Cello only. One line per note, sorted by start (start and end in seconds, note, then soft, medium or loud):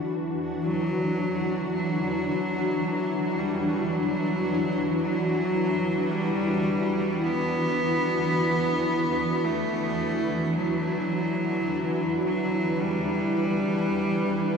0.64 1.69 F#3 medium
1.73 3.40 F#3 medium
3.39 3.94 G3 medium
3.92 5.01 F#3 medium
5.02 6.12 F#3 medium
6.11 7.24 G3 medium
7.22 9.47 B3 medium
9.45 10.57 A3 medium
10.57 12.21 F#3 medium
12.25 12.82 F#3 medium
12.80 14.57 G3 medium